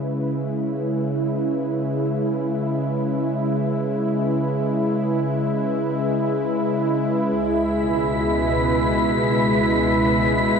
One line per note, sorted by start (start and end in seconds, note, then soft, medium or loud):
0.00 7.30 C#3 medium
0.00 10.60 G#3 medium
0.00 10.60 E4 medium
0.00 7.30 B4 medium
7.28 10.60 C#2 medium
7.33 10.60 B5 medium
7.33 10.60 B6 medium
7.70 10.60 B2 medium
7.88 10.60 B4 medium